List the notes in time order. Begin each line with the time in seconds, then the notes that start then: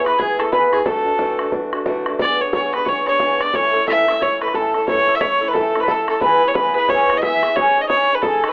0.04 B3 E4 G#4 B4, bodhran
0.17 E3 B3 E4 G#4, bodhran
0.37 B3 E4 G#4 A4, bodhran
0.51 E3 B3 E4 G#4 B4, bodhran
0.63 bodhran
0.70 B3 E4 G#4, bodhran
0.85 D3 E3 A3 D4 F#4 A4, bodhran
1.04 A3 D4 F#4
1.17 D3 E3 A3 D4 F#4, bodhran
1.38 A3 D4 F#4, bodhran
1.52 E3 A3 D4 F#4, bodhran
1.73 A3 D4 F#4, bodhran
1.85 D3 E3 A3 D4 F#4, bodhran
1.96 bodhran
2.06 A3 D4 F#4, bodhran
2.19 E3 B3 D4 G#4 D5, bodhran
2.40 B3 D4 G#4 C#5
2.53 E3 B3 D4 G#4 C#5, bodhran
2.73 B3 D4 G#4 B4, bodhran
2.85 E3 B3 D4 G#4 C#5, bodhran
3.06 B3 D4 G#4 C#5, bodhran
3.19 E3 B3 D4 G#4, bodhran
3.30 bodhran
3.40 B3 D4 G#4 D5, bodhran
3.53 A2 E3 A3 C#4 E4 A4 C#5, bodhran
3.73 A3 C#4 E4 A4
3.86 A2 E3 A3 C#4 E4 A4 E5, bodhran
3.98 E5
4.08 A3 C#4 E4 E5, bodhran
4.20 A3 C#4 E4 A4 C#5, bodhran
4.41 A3 C#4 E4 A4 B4, bodhran
4.48 bodhran
4.53 A2 E3 A3 C#4 E4 A4, bodhran
4.65 bodhran
4.74 A3 C#4 E4 A4, bodhran
4.88 A2 E3 A3 C#4 E4 A4 C#5, bodhran
5.08 A3 C#4 E4 A4
5.15 E5
5.20 A3 C#4 E4 A4 C#5, bodhran
5.41 A3 C#4 E4 A4
5.48 B4
5.54 A2 E3 A3 C#4 E4 A4, bodhran
5.75 A3 C#4 E4 A4, bodhran
5.81 B4
5.87 A3 C#4 E4 A4, bodhran
6.08 A3 C#4 E4 A4, bodhran
6.21 E3 G#3 B3 E4 G#4 B4, bodhran
6.43 B3 E4 G#4
6.48 C#5
6.54 G#3 B3 E4 G#4 B4, bodhran
6.74 E4 G#4 B4
6.79 B3
6.88 E3 G#3 B3 E4 G#4 C#5, bodhran
7.10 B3 E4 G#4, bodhran
7.17 D#5
7.22 G#3 B3 E4 G#4 E5, bodhran
7.43 B3 E4 G#4, bodhran
7.56 C#3 G#3 C#4 D#4 G#4 C#5, bodhran
7.77 C#4 D#4 G#4
7.81 D#5
7.89 G#3 C#4 D#4 G#4 C#5, bodhran
8.10 C#4 D#4 G#4
8.15 B4
8.22 C#3 G#3 C#4 D#4 G#4 A4, bodhran
8.43 C#4 D#4 G#4, bodhran
8.48 B4